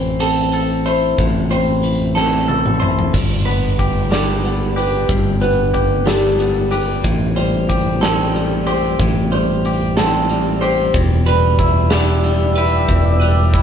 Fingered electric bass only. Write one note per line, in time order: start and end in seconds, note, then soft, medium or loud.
0.00 1.15 A1 medium
1.18 3.10 A1 medium
3.14 5.05 G1 medium
5.09 7.01 G1 medium
7.05 8.96 A1 medium
9.00 10.91 A1 medium
10.94 12.85 E1 medium
12.89 13.62 E1 medium